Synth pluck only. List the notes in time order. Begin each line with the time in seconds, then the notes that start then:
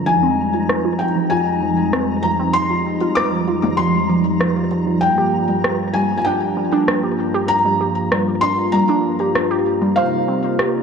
0.08 F3
0.23 C4
0.54 F4
0.85 F4
1.16 F3
1.31 F4
1.62 F3
1.93 C4
2.24 F3
2.40 C4
2.70 F4
3.01 F4
3.32 F3
3.48 F4
3.79 F3
4.10 F3
4.41 F3
4.56 F4
4.71 F3
4.87 F3
5.18 G4
5.49 G3
5.64 G4
5.95 G3
6.26 D4
6.57 G3
6.73 D4
7.03 G4
7.34 G4
7.65 G3
7.81 G4
8.12 G3
8.43 D4
8.74 G3
8.89 D4
9.20 G4
9.51 G4
9.82 G3
9.97 C5
10.28 C4
10.59 G4